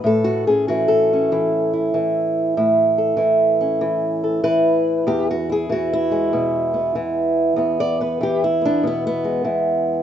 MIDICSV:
0, 0, Header, 1, 2, 480
1, 0, Start_track
1, 0, Key_signature, 4, "major"
1, 0, Tempo, 626959
1, 35, Time_signature, 4, 2, 24, 8
1, 7676, End_track
2, 0, Start_track
2, 0, Title_t, "Steel-string acoustic guitar"
2, 0, Program_c, 0, 25
2, 0, Note_on_c, 0, 52, 58
2, 29, Note_on_c, 0, 45, 71
2, 49, Note_on_c, 0, 69, 92
2, 187, Note_on_c, 0, 66, 82
2, 351, Note_off_c, 0, 66, 0
2, 362, Note_on_c, 0, 68, 75
2, 375, Note_on_c, 0, 61, 45
2, 519, Note_off_c, 0, 68, 0
2, 522, Note_on_c, 0, 66, 80
2, 529, Note_off_c, 0, 52, 0
2, 532, Note_on_c, 0, 52, 63
2, 666, Note_off_c, 0, 69, 0
2, 676, Note_on_c, 0, 69, 91
2, 863, Note_off_c, 0, 61, 0
2, 866, Note_on_c, 0, 61, 42
2, 1011, Note_off_c, 0, 52, 0
2, 1011, Note_on_c, 0, 52, 64
2, 1160, Note_off_c, 0, 66, 0
2, 1328, Note_on_c, 0, 64, 43
2, 1485, Note_off_c, 0, 52, 0
2, 1485, Note_on_c, 0, 52, 60
2, 1934, Note_off_c, 0, 45, 0
2, 1955, Note_off_c, 0, 61, 0
2, 1967, Note_off_c, 0, 64, 0
2, 1969, Note_on_c, 0, 45, 69
2, 1970, Note_on_c, 0, 64, 50
2, 2117, Note_off_c, 0, 69, 0
2, 2282, Note_on_c, 0, 69, 45
2, 2422, Note_off_c, 0, 52, 0
2, 2425, Note_on_c, 0, 52, 60
2, 2432, Note_off_c, 0, 64, 0
2, 2435, Note_on_c, 0, 64, 47
2, 2762, Note_on_c, 0, 61, 42
2, 2917, Note_off_c, 0, 52, 0
2, 2917, Note_on_c, 0, 52, 60
2, 3234, Note_off_c, 0, 69, 0
2, 3244, Note_on_c, 0, 69, 42
2, 3395, Note_off_c, 0, 69, 0
2, 3396, Note_off_c, 0, 52, 0
2, 3396, Note_on_c, 0, 52, 61
2, 3398, Note_on_c, 0, 71, 98
2, 3862, Note_off_c, 0, 61, 0
2, 3864, Note_off_c, 0, 45, 0
2, 3877, Note_off_c, 0, 71, 0
2, 3879, Note_on_c, 0, 40, 77
2, 3883, Note_off_c, 0, 64, 0
2, 3886, Note_on_c, 0, 67, 88
2, 4042, Note_off_c, 0, 67, 0
2, 4062, Note_on_c, 0, 66, 80
2, 4207, Note_on_c, 0, 64, 47
2, 4210, Note_off_c, 0, 66, 0
2, 4227, Note_on_c, 0, 68, 79
2, 4357, Note_off_c, 0, 52, 0
2, 4360, Note_on_c, 0, 52, 62
2, 4373, Note_off_c, 0, 68, 0
2, 4381, Note_on_c, 0, 66, 89
2, 4540, Note_off_c, 0, 64, 0
2, 4543, Note_on_c, 0, 64, 98
2, 4681, Note_on_c, 0, 56, 44
2, 4846, Note_on_c, 0, 47, 64
2, 5009, Note_off_c, 0, 66, 0
2, 5159, Note_on_c, 0, 59, 42
2, 5315, Note_off_c, 0, 52, 0
2, 5321, Note_off_c, 0, 47, 0
2, 5324, Note_on_c, 0, 52, 62
2, 5782, Note_off_c, 0, 40, 0
2, 5791, Note_on_c, 0, 40, 73
2, 5800, Note_off_c, 0, 59, 0
2, 5803, Note_on_c, 0, 59, 51
2, 5969, Note_off_c, 0, 64, 0
2, 5973, Note_on_c, 0, 74, 101
2, 6124, Note_off_c, 0, 74, 0
2, 6125, Note_off_c, 0, 59, 0
2, 6128, Note_on_c, 0, 59, 48
2, 6134, Note_on_c, 0, 71, 67
2, 6274, Note_off_c, 0, 52, 0
2, 6283, Note_on_c, 0, 52, 61
2, 6299, Note_off_c, 0, 59, 0
2, 6302, Note_on_c, 0, 67, 84
2, 6445, Note_off_c, 0, 71, 0
2, 6449, Note_off_c, 0, 67, 0
2, 6461, Note_on_c, 0, 64, 77
2, 6595, Note_on_c, 0, 59, 43
2, 6599, Note_off_c, 0, 56, 0
2, 6626, Note_on_c, 0, 62, 84
2, 6763, Note_on_c, 0, 47, 60
2, 6770, Note_off_c, 0, 62, 0
2, 6789, Note_off_c, 0, 59, 0
2, 6793, Note_on_c, 0, 59, 79
2, 6934, Note_off_c, 0, 59, 0
2, 6942, Note_on_c, 0, 59, 90
2, 7077, Note_on_c, 0, 56, 43
2, 7087, Note_off_c, 0, 64, 0
2, 7222, Note_off_c, 0, 52, 0
2, 7232, Note_on_c, 0, 52, 59
2, 7238, Note_off_c, 0, 47, 0
2, 7676, Note_off_c, 0, 40, 0
2, 7676, Note_off_c, 0, 52, 0
2, 7676, Note_off_c, 0, 56, 0
2, 7676, Note_off_c, 0, 59, 0
2, 7676, End_track
0, 0, End_of_file